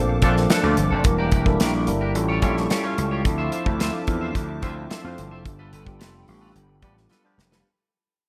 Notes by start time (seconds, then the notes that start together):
Already playing: A#1 F3 A#3 C4 D4 A4 C5 F5 A5 D6
0.09 muted clean electric guitar stroke
0.22 A#1 F3 A3 A#3 C4 D4 F4 A4 D5, kick, closed hi-hat
0.37 muted clean electric guitar stroke, snare
0.50 C4 D4 A4, snare, closed hi-hat
0.63 D2 A3 D4 F4 D5, muted clean electric guitar stroke
0.77 G1, muted clean electric guitar stroke, closed hi-hat
0.91 F1 C4 D4 A4
1.04 E1 G3 A#3 D4 E4 A#4 E5 G5, muted clean electric guitar stroke, kick, closed hi-hat
1.18 D4 G4 A#4
1.32 E1 D4 G4 A#4, kick, closed hi-hat
1.46 G3 A#3 D4 E4 A4, muted clean electric guitar stroke, kick
1.60 A#1 D4 G4 A#4, snare, closed hi-hat
1.74 muted clean electric guitar stroke
1.87 G1 G3 A#3 D4 E4 A#4, muted clean electric guitar stroke, closed hi-hat
2.01 D4 G4 A#4
2.14 A1 G3 C#4 E4 F4 A4 G5 A5 C#6, muted clean electric guitar stroke, closed hi-hat
2.29 F4 G4 C#5
2.42 A#1 G3 C#4 E4 F4 G4 A4 C#5, kick, closed hi-hat
2.56 muted clean electric guitar stroke, snare
2.70 F4 G4 C#5, snare, closed hi-hat
2.83 G3 C#4 F4 C#5, muted clean electric guitar stroke
2.98 C#2, muted clean electric guitar stroke, closed hi-hat
3.11 F4 G4 C#5
3.25 D2 F3 C4 D4 E4 A4 C5 E5 D6, muted clean electric guitar stroke, kick, closed hi-hat
3.38 F4 C5 E5
3.52 F4 C5 E5, closed hi-hat
3.66 D2 F3 C4 D4 E4 A4, muted clean electric guitar stroke, kick
3.80 F4 C5 E5, snare, closed hi-hat
3.94 muted clean electric guitar stroke
4.07 E2 F3 C4 D4 E4 A4, muted clean electric guitar stroke, kick, closed hi-hat
4.21 F4 C5 E5
4.35 D2, muted clean electric guitar stroke, kick, closed hi-hat
4.49 muted clean electric guitar stroke
4.62 D2 F3 A3 C4 D4 E4 F4 C5 E5, kick, closed hi-hat
4.76 muted clean electric guitar stroke
4.90 F4 C5 E5, snare, closed hi-hat
5.03 F2 A3 C4 F4 C5, muted clean electric guitar stroke
5.17 G1, muted clean electric guitar stroke, closed hi-hat
5.31 F1 F4 C5 E5
5.45 G1 G3 B3 D4 F4 A4 G5 B5, kick, closed hi-hat
5.59 F4 A4 B4
5.73 G1 F4 A4 B4, closed hi-hat
5.86 G3 B3 D4 F4 G4, muted clean electric guitar stroke, kick
5.99 F1 F4 A4 B4, snare, closed hi-hat
6.14 muted clean electric guitar stroke
6.27 A1 G3 B3 D4 F4 G4, muted clean electric guitar stroke, open hi-hat
6.41 F4 A4 B4
6.54 G1, muted clean electric guitar stroke, closed hi-hat
6.68 muted clean electric guitar stroke
6.82 A1 F3 G3 B3 D4 F4 G4 A4 B4, kick, closed hi-hat
6.96 muted clean electric guitar stroke, snare
7.10 F4 A4 B4, snare
7.24 F3 B3 D4 B4, muted clean electric guitar stroke
7.38 F1, muted clean electric guitar stroke, snare
7.51 F4 A4 B4, snare